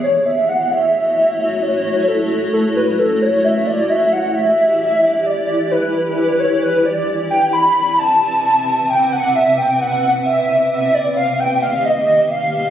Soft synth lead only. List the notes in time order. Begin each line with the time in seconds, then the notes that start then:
0.03 C#5
0.26 E5
0.49 F#5
0.71 E5
1.62 C#5
2.08 A4
2.53 A4
2.76 B4
2.99 A4
3.21 C#5
3.44 E5
3.67 D5
3.90 E5
4.12 F#5
4.35 E5
5.26 D5
5.71 B4
6.17 B4
6.40 C#5
6.62 B4
6.85 D5
7.30 G5
7.53 B5
7.99 A5
8.89 G5
9.12 F#5
9.35 E5
9.58 G5
9.80 F#5
10.26 E5
10.71 E5
10.94 D5
11.17 F5
11.40 G5
11.62 F5
11.85 D#5
12.30 F5